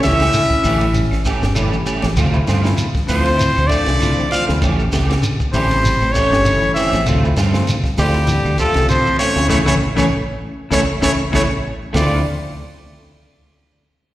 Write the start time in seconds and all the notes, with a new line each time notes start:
0.03 C#2 E3 C#4 G4 E5, snare, ride bell, shekere
0.07 E4
0.19 A3 C#4 G4, snare, ride bell, claves, shekere
0.33 D3, ride bell, shekere
0.50 kick, snare, shekere
0.63 A1 D3 E3 G3 A3 C#4 E4 G4, open hi-hat, claves, shekere
0.81 ride bell, shekere
0.94 E3, ride bell, shekere
1.11 A1, snare, claves, shekere
1.25 E3 A3 C#4 G4, kick, snare, ride bell, shekere
1.42 G1, snare, shekere
1.55 D3 E3 G3 A3 C#4 E4 G4, ride bell, claves, shekere
1.72 E3, shekere
1.86 A3 C#4 G4, ride bell, shekere
2.02 A1 F3, snare, ride bell, shekere
2.17 D2 C3 F3 A3 C4 F4, kick, snare, ride bell, claves, shekere
2.32 F3 A3 C4 E4, shekere
2.47 G2 F3 A3 C4 F4, snare, ride bell, shekere
2.63 F3 A3 C4 E4, snare, claves, shekere
2.77 D3, ride bell, shekere
2.95 kick, snare, shekere
3.07 D2 D3 F3 A3 C4 E4 F4 C5, open hi-hat, claves, shekere
3.26 snare, ride bell, shekere
3.38 E4, ride bell, shekere
3.56 D2, claves, shekere
3.67 F3 A3 C4 D4 F4 D5, kick, snare, ride bell
3.72 shekere
3.86 C2, snare, ride bell, shekere
4.00 D3 F3 A3 C4 E4 F4, ride bell, claves, shekere
4.17 E3, shekere
4.30 F3 A3 C4 F4 F5, ride bell, shekere
4.47 D2 F3 A3 C4 E4, snare, shekere
4.61 A1 C#3 E3 A3 C#4 G4, kick, ride bell, claves, shekere
4.79 shekere
4.92 C#2 E3 A3 C#4 G4, snare, ride bell, shekere
5.09 snare, ride bell, claves, shekere
5.22 D3, ride bell, shekere
5.40 kick, shekere
5.53 A1 C#3 D3 E3 G3 A3 C4 C#4 E4 G4 C5, open hi-hat, claves, shekere
5.71 snare, ride bell, shekere
5.83 E3, ride bell, shekere
6.02 A1, claves, shekere
6.10 A3 C#4 C#5
6.15 E3 A3 G4, muted clean electric guitar stroke, kick, ride bell, shekere
6.32 G1, snare, shekere
6.45 D3 G3 A3 C#4 E4, ride bell, claves, shekere
6.62 E3, shekere
6.73 E3 A3 C4 C#4 E4 G4 E5, shekere
6.77 ride bell
6.92 A1 F3, snare, ride bell, shekere
7.06 D2 C3 A3 C4 F4, kick, ride bell, claves, shekere
7.23 F3 A3 C4 E4, shekere
7.36 G2 A3 C4 F4, snare, ride bell, shekere
7.53 F3 A3 C4 F4, snare, claves, shekere
7.67 D3, snare, ride bell, shekere
7.84 kick, snare, shekere
7.97 D2 D3 F3 G3 A3 C4 E4 F4 G4, open hi-hat, claves, shekere
8.14 ride bell, shekere
8.27 E3, ride bell, shekere
8.45 D2, claves, shekere
8.58 F3 A3 C4 F4 A4, kick, snare, ride bell, shekere
8.74 C2, snare, ride bell, shekere
8.88 D3 F3 A3 C4 F4 C5, ride bell, claves, shekere
9.06 E3, shekere
9.19 A3 C4 C#4 F4 C#5, ride bell, shekere
9.35 D2 F3 A3 C4 E4, snare, shekere
9.49 A1 A2 C#3 E3 A3 C#4 E4 C#5, kick, snare, claves, shekere
9.65 A1 A2 C#3 E3 A3 C#4 E4 C#5, kick, snare, claves, shekere
9.96 A1 A2 C#3 E3 A3 C#4 E4 C#5, kick, snare, claves, shekere
10.70 A1 A2 C#3 E3 A3 C#4 E4 C#5, kick, snare, claves, shekere
11.01 A1 A2 C#3 E3 A3 C#4 E4 C#5, kick, snare, claves, shekere
11.05 A3
11.32 A1 A2 C#3 E3 A3 C#4 E4 C#5, kick, snare, claves, shekere
11.93 D2 D3 F3 A3 C4 D4 E4 F4 D5, kick, snare, open hi-hat, claves, shekere